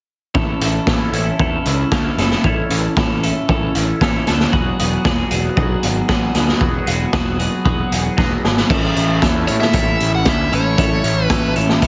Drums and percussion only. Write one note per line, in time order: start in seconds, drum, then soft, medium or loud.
0.35 kick medium
0.61 closed hi-hat medium
0.87 kick loud
0.87 snare loud
1.13 closed hi-hat medium
1.39 kick medium
1.65 closed hi-hat medium
1.92 kick medium
1.92 snare medium
2.18 snare medium
2.18 closed hi-hat medium
2.31 snare medium
2.44 kick loud
2.70 closed hi-hat medium
2.97 kick loud
2.97 snare loud
3.23 closed hi-hat medium
3.49 kick loud
3.75 closed hi-hat medium
4.01 kick loud
4.01 snare loud
4.27 snare medium
4.27 closed hi-hat medium
4.40 snare medium
4.53 kick loud
4.79 closed hi-hat medium
5.05 kick loud
5.05 snare loud
5.31 closed hi-hat medium
5.57 kick medium
5.83 closed hi-hat medium
6.09 kick medium
6.09 snare loud
6.35 snare medium
6.35 closed hi-hat medium
6.48 snare medium
6.61 kick loud
6.87 closed hi-hat medium
7.13 kick loud
7.13 snare loud
7.39 closed hi-hat medium
7.65 kick loud
7.92 closed hi-hat medium
8.18 kick loud
8.18 snare medium
8.45 snare medium
8.57 snare medium
8.70 kick loud
8.70 crash medium
8.96 closed hi-hat medium
9.22 kick loud
9.22 snare loud
9.22 closed hi-hat medium
9.48 closed hi-hat medium
9.62 snare medium
9.73 kick loud
9.73 closed hi-hat medium
10.00 closed hi-hat medium
10.25 kick loud
10.25 snare loud
10.25 closed hi-hat medium
10.52 closed hi-hat medium
10.78 kick loud
10.78 closed hi-hat medium
11.04 closed hi-hat medium
11.30 kick loud
11.30 snare loud
11.30 closed hi-hat medium
11.56 closed hi-hat medium
11.69 snare medium
11.82 kick medium
11.82 closed hi-hat medium